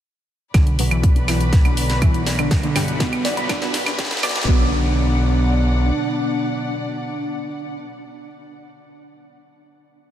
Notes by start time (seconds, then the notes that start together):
0.54 B1 B2 D3 B3 D4 F#4 B4 D5 B5, kick, snare, closed hi-hat, riser, claves
0.67 closed hi-hat
0.79 B2 F#3 B3 D4, open hi-hat
0.91 E3 E4, closed hi-hat, claves
1.03 B4, kick, closed hi-hat
1.16 D4, closed hi-hat
1.28 E3 E4, snare, open hi-hat, claves
1.41 F#4, closed hi-hat
1.53 B4, kick, snare, closed hi-hat
1.65 D3 B3 D4, closed hi-hat, claves
1.77 D4, open hi-hat
1.90 snare, closed hi-hat
2.02 E3 E4 F#4, kick, closed hi-hat, claves
2.14 D4, closed hi-hat
2.26 D5, snare, open hi-hat
2.39 D3 B3 D4, closed hi-hat, claves
2.51 B1 B4 D5 B5, kick, snare, closed hi-hat
2.63 D3 B3 D4, closed hi-hat
2.76 G2 D3 G3 D4, snare, open hi-hat, claves
2.88 closed hi-hat
3.00 B2 B3 G4, kick, snare, closed hi-hat
3.13 closed hi-hat, claves
3.25 D5, snare, open hi-hat
3.37 B5, closed hi-hat
3.49 D3 D4, kick, snare, closed hi-hat, claves
3.62 B3, snare, closed hi-hat, mid tom
3.74 snare, open hi-hat
3.86 D4, snare, closed hi-hat, claves
3.98 C#3 C#4 G4, kick, snare, closed hi-hat
4.05 snare
4.11 snare, closed hi-hat, mid tom
4.17 snare
4.23 B2 F#3 B3 D5, snare, open hi-hat, claves
4.29 snare
4.36 snare, closed hi-hat
4.42 snare
4.48 B1 B2 D3 F#3 B3 D4 D5 F#5, kick